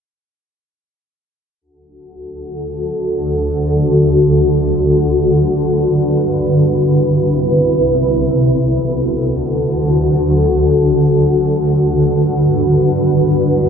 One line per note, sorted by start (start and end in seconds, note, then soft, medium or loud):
1.61 4.85 D2 medium
1.61 6.47 D3 medium
1.61 6.47 F#4 medium
1.61 4.85 A4 medium
4.88 6.50 G2 medium
4.88 6.50 B4 medium
6.51 8.13 C2 medium
6.51 8.13 C3 medium
6.51 8.13 E4 medium
6.51 8.13 B4 medium
8.14 11.38 D2 medium
8.14 11.38 D3 medium
8.14 11.38 F#4 medium
8.14 11.38 A4 medium
11.41 13.03 G2 medium
11.41 13.03 D3 medium
11.41 13.03 F#4 medium
11.41 13.69 B4 medium
13.04 13.69 C2 medium
13.04 13.69 C3 medium
13.04 13.69 E4 medium